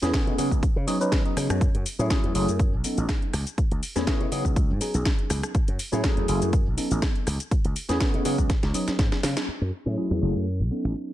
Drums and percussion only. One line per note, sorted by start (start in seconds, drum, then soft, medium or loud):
0.01 snare soft
0.01 closed hi-hat soft
0.01 shaker medium
0.01 shaker soft
0.14 kick loud
0.14 snare loud
0.14 closed hi-hat medium
0.14 shaker soft
0.27 closed hi-hat soft
0.38 open hi-hat loud
0.38 shaker medium
0.51 kick medium
0.51 closed hi-hat soft
0.51 shaker medium
0.51 shaker soft
0.62 kick loud
0.62 closed hi-hat medium
0.62 shaker medium
0.62 shaker soft
0.76 shaker soft
0.88 open hi-hat loud
0.88 shaker medium
1.01 closed hi-hat soft
1.01 shaker medium
1.01 shaker soft
1.11 kick loud
1.11 snare loud
1.11 closed hi-hat medium
1.11 shaker medium
1.11 shaker soft
1.26 closed hi-hat soft
1.37 cross-stick medium
1.37 open hi-hat loud
1.37 shaker medium
1.50 cross-stick medium
1.50 closed hi-hat soft
1.50 shaker medium
1.50 shaker soft
1.61 kick loud
1.61 closed hi-hat medium
1.61 shaker soft
1.74 closed hi-hat soft
1.74 shaker soft
1.86 open hi-hat loud
1.86 shaker medium
1.99 shaker medium
1.99 shaker soft
2.10 kick loud
2.10 snare loud
2.10 closed hi-hat medium
2.10 shaker soft
2.24 closed hi-hat soft
2.35 open hi-hat loud
2.35 shaker medium
2.48 closed hi-hat soft
2.48 shaker medium
2.48 shaker soft
2.60 kick loud
2.60 closed hi-hat medium
2.60 shaker soft
2.60 shaker medium
2.73 shaker soft
2.84 open hi-hat loud
2.84 shaker medium
2.97 closed hi-hat soft
2.97 shaker medium
2.97 shaker soft
3.09 kick loud
3.09 cross-stick medium
3.09 snare loud
3.09 closed hi-hat medium
3.09 shaker soft
3.22 closed hi-hat soft
3.22 shaker soft
3.33 cross-stick medium
3.33 open hi-hat loud
3.33 shaker medium
3.46 closed hi-hat soft
3.46 shaker medium
3.46 shaker soft
3.58 kick loud
3.58 closed hi-hat medium
3.58 shaker medium
3.58 shaker soft
3.71 closed hi-hat medium
3.71 shaker soft
3.83 open hi-hat medium
3.83 shaker medium
3.96 snare soft
3.96 shaker medium
3.96 shaker soft
4.07 kick loud
4.07 snare loud
4.07 closed hi-hat medium
4.07 shaker soft
4.21 closed hi-hat soft
4.21 shaker soft
4.32 open hi-hat loud
4.32 shaker medium
4.45 kick medium
4.45 shaker medium
4.45 shaker soft
4.56 kick loud
4.56 closed hi-hat medium
4.56 shaker medium
4.56 shaker soft
4.70 shaker soft
4.81 open hi-hat loud
4.81 shaker medium
4.94 closed hi-hat soft
4.94 shaker soft
4.94 shaker medium
5.05 kick loud
5.05 snare loud
5.05 closed hi-hat medium
5.05 shaker soft
5.19 closed hi-hat soft
5.19 shaker soft
5.30 cross-stick medium
5.30 open hi-hat loud
5.30 shaker medium
5.43 cross-stick medium
5.43 closed hi-hat soft
5.43 shaker medium
5.43 shaker soft
5.54 kick loud
5.54 closed hi-hat medium
5.54 shaker medium
5.54 shaker soft
5.68 closed hi-hat medium
5.68 shaker soft
5.79 open hi-hat loud
5.79 shaker medium
5.92 shaker medium
5.92 shaker soft
6.04 kick loud
6.04 snare loud
6.04 closed hi-hat medium
6.04 shaker soft
6.17 closed hi-hat soft
6.17 shaker soft
6.28 open hi-hat medium
6.28 shaker medium
6.42 closed hi-hat soft
6.42 shaker soft
6.42 shaker medium
6.53 kick loud
6.53 closed hi-hat medium
6.53 shaker soft
6.53 shaker medium
6.66 shaker soft
6.78 open hi-hat loud
6.78 shaker medium
6.91 closed hi-hat soft
6.91 shaker soft
6.91 shaker medium
7.02 kick loud
7.02 cross-stick medium
7.02 snare loud
7.02 closed hi-hat medium
7.02 shaker soft
7.16 closed hi-hat soft
7.16 shaker soft
7.27 cross-stick medium
7.27 open hi-hat medium
7.27 shaker medium
7.40 closed hi-hat medium
7.40 shaker medium
7.40 shaker soft
7.51 kick loud
7.51 closed hi-hat medium
7.51 shaker medium
7.51 shaker soft
7.65 closed hi-hat medium
7.65 shaker soft
7.76 open hi-hat loud
7.76 shaker medium
7.89 snare soft
7.89 closed hi-hat soft
7.89 shaker medium
7.89 shaker soft
8.00 kick loud
8.00 snare loud
8.00 closed hi-hat medium
8.00 shaker soft
8.13 closed hi-hat soft
8.13 shaker soft
8.25 open hi-hat loud
8.25 shaker medium
8.38 kick medium
8.38 closed hi-hat soft
8.38 shaker soft
8.38 shaker medium
8.50 kick loud
8.50 snare medium
8.50 closed hi-hat medium
8.50 shaker medium
8.50 shaker soft
8.63 snare medium
8.63 closed hi-hat soft
8.63 shaker soft
8.74 open hi-hat loud
8.74 shaker medium
8.88 snare medium
8.88 closed hi-hat soft
8.88 shaker soft
8.88 shaker medium
8.99 kick loud
8.99 snare medium
8.99 closed hi-hat medium
8.99 shaker soft
8.99 shaker medium
9.12 snare medium
9.12 closed hi-hat soft
9.23 snare medium
9.23 open hi-hat loud
9.23 shaker medium
9.37 snare medium
9.37 closed hi-hat medium
9.37 shaker medium
9.37 shaker soft
9.73 shaker medium
9.86 shaker soft
9.97 closed hi-hat medium
9.97 shaker soft
10.11 closed hi-hat soft
10.22 shaker medium
10.35 closed hi-hat soft
10.35 shaker soft
10.47 closed hi-hat medium
10.47 shaker soft
10.71 shaker medium
10.84 closed hi-hat soft
10.84 shaker soft
10.96 closed hi-hat medium
10.96 shaker soft
11.09 closed hi-hat soft